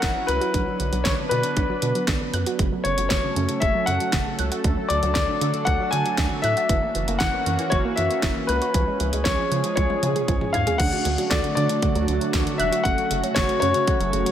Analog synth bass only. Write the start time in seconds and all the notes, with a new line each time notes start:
0.03 F#1
0.28 C#2
0.54 B1
0.80 B1
0.93 B1
1.05 B1
1.31 B2
1.57 B1
1.82 B2
2.08 B1
2.33 F#2
2.59 F#1
2.85 F#1
2.98 F#1
3.11 F#1
3.36 F#2
3.62 F#1
3.88 F#2
4.13 F#1
4.39 C#2
4.64 D2
4.90 D2
5.03 D2
5.16 D2
5.41 D3
5.67 D2
5.93 D3
6.18 D2
6.44 A2
6.69 F#1
6.95 F#1
7.08 F#1
7.21 F#1
7.46 F#2
7.72 F#1
7.98 F#2
8.23 F#1
8.49 C#2
8.74 C#2
9.00 C#2
9.13 C#2
9.26 C#2
9.51 C#3
9.77 C#2
10.03 C#3
10.28 C#2
10.54 G#2
10.80 D2
11.05 D2
11.31 D2
11.57 D3
11.95 D2
12.08 D2
12.34 D2
12.59 E1
12.85 F#1
13.11 F#1
13.36 F#1
13.62 F#2
14.00 F#1
14.13 F#1